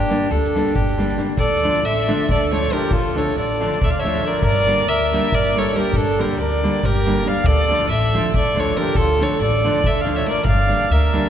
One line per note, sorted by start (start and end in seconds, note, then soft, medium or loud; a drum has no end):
0.00 0.28 D4 loud
0.00 0.32 G4 loud
0.09 0.26 D3 medium
0.09 0.26 G3 medium
0.09 0.26 A#3 medium
0.09 0.27 D4 medium
0.09 snare soft
0.29 0.58 D2 medium
0.29 0.73 D4 medium
0.29 0.77 A4 medium
0.29 snare soft
0.43 snare soft
0.55 0.72 D3 medium
0.55 0.72 G3 medium
0.55 0.72 A#3 medium
0.55 0.72 D4 medium
0.55 snare soft
0.66 snare soft
0.74 1.13 G1 medium
0.74 1.23 D4 medium
0.74 1.23 G4 medium
0.74 kick medium
0.87 snare soft
0.97 1.14 D3 medium
0.97 1.14 G3 medium
0.97 1.14 A#3 medium
0.97 1.15 D4 medium
0.97 snare soft
1.08 snare soft
1.17 1.33 D3 soft
1.17 1.34 G3 medium
1.17 1.34 A#3 soft
1.17 1.34 D4 medium
1.17 snare soft
1.38 1.65 D2 medium
1.38 1.81 A4 medium
1.38 1.86 D5 loud
1.38 kick medium
1.62 1.79 D3 medium
1.62 1.79 F3 soft
1.62 1.80 A3 medium
1.62 1.80 D4 medium
1.62 snare soft
1.74 snare soft
1.83 2.11 A1 medium
1.83 2.29 A4 medium
1.83 2.30 E5 medium
1.83 snare soft
2.07 2.24 D3 medium
2.07 2.24 F3 medium
2.07 2.24 A3 medium
2.07 2.25 D4 medium
2.07 snare soft
2.19 snare soft
2.29 2.66 D2 medium
2.29 2.51 A4 medium
2.29 2.51 D5 medium
2.29 kick medium
2.51 2.67 D3 medium
2.51 2.67 F3 medium
2.51 2.67 A3 medium
2.51 2.68 D4 medium
2.51 2.71 A4 medium
2.51 2.75 C#5 medium
2.51 snare soft
2.62 snare soft
2.70 2.86 D3 medium
2.70 2.87 F3 soft
2.70 2.87 A3 soft
2.70 2.87 D4 medium
2.70 2.92 G4 medium
2.70 2.94 A#4 medium
2.70 snare soft
2.91 3.18 D2 medium
2.91 3.16 F4 loud
2.91 3.19 A4 medium
2.91 kick medium
3.14 3.31 D3 medium
3.14 3.31 F3 medium
3.14 3.32 A3 medium
3.14 3.32 D4 medium
3.14 3.36 A4 medium
3.14 3.37 C#5 medium
3.14 snare soft
3.27 snare soft
3.36 3.63 A1 medium
3.36 3.79 A4 medium
3.36 3.86 D5 medium
3.36 snare soft
3.60 3.77 D3 medium
3.60 3.77 F3 medium
3.60 3.77 A3 medium
3.60 3.78 D4 medium
3.60 snare soft
3.72 snare soft
3.81 4.18 D2 medium
3.81 3.89 A4 medium
3.81 3.92 E5 medium
3.81 kick medium
3.87 3.95 D5 medium
3.87 4.01 F5 medium
3.99 4.24 C#5 medium
3.99 4.29 E5 medium
4.04 4.19 D3 medium
4.04 4.19 F3 medium
4.04 4.20 A3 medium
4.04 4.20 D4 medium
4.04 snare soft
4.15 snare soft
4.22 4.38 D3 medium
4.22 4.39 F3 soft
4.22 4.38 A3 soft
4.22 4.39 D4 medium
4.22 4.42 A#4 medium
4.22 snare soft
4.27 4.44 D5 medium
4.42 4.70 G1 loud
4.42 4.85 A#4 loud
4.42 4.90 D5 loud
4.42 kick medium
4.67 4.83 D3 medium
4.67 4.84 G3 medium
4.67 4.84 A#3 medium
4.67 4.84 D4 medium
4.67 snare soft
4.78 snare soft
4.87 5.14 D2 medium
4.87 5.33 A#4 medium
4.87 5.36 E5 loud
4.87 snare soft
5.12 5.28 D3 medium
5.12 5.29 G3 medium
5.12 5.29 A#3 medium
5.12 5.29 D4 medium
5.12 snare soft
5.23 snare soft
5.32 5.69 G1 medium
5.32 5.57 A#4 medium
5.32 5.60 D5 loud
5.32 kick medium
5.54 5.70 D3 medium
5.54 5.71 G3 medium
5.54 5.71 A#3 medium
5.54 5.71 D4 medium
5.54 5.76 A4 medium
5.54 snare soft
5.59 5.78 C#5 medium
5.65 snare soft
5.73 5.89 D3 soft
5.73 5.90 G3 medium
5.73 5.90 A#3 soft
5.73 5.90 D4 medium
5.73 5.97 A#4 loud
5.73 snare soft
5.78 5.96 G4 medium
5.93 6.20 G1 medium
5.93 6.20 D4 medium
5.93 6.22 A4 loud
5.93 kick medium
6.07 snare soft
6.19 6.35 D3 medium
6.19 6.35 G3 medium
6.19 6.35 A#3 medium
6.19 6.36 D4 medium
6.19 6.39 G4 medium
6.19 6.39 A#4 medium
6.19 snare soft
6.37 6.65 D2 loud
6.37 6.82 A#4 medium
6.37 6.87 D5 medium
6.37 snare soft
6.50 snare soft
6.63 6.79 D3 medium
6.63 6.79 G3 medium
6.63 6.80 A#3 medium
6.63 6.80 D4 medium
6.63 snare soft
6.83 7.20 G1 medium
6.83 7.26 G4 medium
6.83 7.29 A#4 medium
6.83 kick medium
6.94 snare soft
7.06 7.21 D3 medium
7.06 7.22 G3 medium
7.06 7.22 A#3 medium
7.06 7.22 D4 medium
7.06 snare soft
7.15 snare soft
7.24 7.40 D3 medium
7.24 7.41 G3 medium
7.24 7.41 A#3 soft
7.24 7.41 D4 medium
7.24 7.46 D5 medium
7.24 7.48 F5 loud
7.44 7.71 D2 medium
7.44 7.90 A4 medium
7.44 7.89 D5 loud
7.44 kick medium
7.69 7.85 D3 medium
7.69 7.86 F3 medium
7.69 7.86 A3 medium
7.69 7.86 D4 medium
7.69 snare soft
7.79 snare soft
7.89 8.16 A1 loud
7.89 8.32 A4 medium
7.89 8.31 E5 loud
7.89 snare soft
8.14 8.30 D3 medium
8.14 8.30 F3 medium
8.14 8.31 A3 medium
8.14 8.31 D4 medium
8.14 snare soft
8.24 snare soft
8.34 8.71 D2 medium
8.34 8.57 A4 medium
8.34 8.61 D5 loud
8.34 kick medium
8.54 8.71 D3 medium
8.54 8.72 F3 medium
8.54 8.72 A3 medium
8.54 8.72 D4 medium
8.54 snare soft
8.59 8.77 A4 medium
8.59 8.79 C#5 medium
8.67 snare soft
8.76 8.91 D3 medium
8.76 8.91 F3 medium
8.76 8.92 A3 soft
8.76 8.92 D4 medium
8.76 8.96 G4 medium
8.76 8.98 A#4 loud
8.76 snare soft
8.95 9.22 D2 loud
8.95 9.22 F4 loud
8.95 9.24 A4 loud
8.95 kick medium
9.19 9.35 D3 medium
9.19 9.35 F3 medium
9.19 9.36 A3 medium
9.19 9.36 D4 medium
9.19 9.40 A4 medium
9.19 9.41 C#5 loud
9.19 snare soft
9.39 9.66 A1 loud
9.39 9.82 A4 medium
9.39 9.88 D5 medium
9.39 snare soft
9.64 9.80 D3 medium
9.64 9.80 F3 medium
9.64 9.81 A3 medium
9.64 9.81 D4 medium
9.64 snare soft
9.74 snare soft
9.84 10.21 D2 medium
9.84 10.01 A4 medium
9.84 10.02 E5 medium
9.84 kick medium
9.99 10.13 D5 medium
9.99 10.18 F5 medium
10.05 10.21 D3 medium
10.05 10.22 F3 medium
10.05 10.22 A3 medium
10.05 10.22 D4 medium
10.05 snare soft
10.15 10.27 C#5 medium
10.15 10.27 E5 medium
10.15 snare soft
10.25 10.41 D3 medium
10.25 10.41 F3 soft
10.25 10.42 A3 soft
10.25 10.42 D4 medium
10.25 10.45 A#4 medium
10.25 10.45 D5 medium
10.25 snare soft
10.45 10.71 G1 medium
10.45 10.88 D5 medium
10.45 10.93 F5 loud
10.45 kick medium
10.67 10.84 D3 medium
10.67 10.84 G3 medium
10.67 10.85 A#3 medium
10.67 10.85 D4 medium
10.67 snare soft
10.80 snare soft
10.90 11.16 D2 loud
10.90 11.29 A#4 medium
10.90 11.29 E5 medium
10.90 snare soft
11.12 11.29 D3 medium
11.12 11.29 G3 medium
11.12 11.29 A#3 medium
11.12 11.29 D4 medium
11.12 snare soft
11.24 snare soft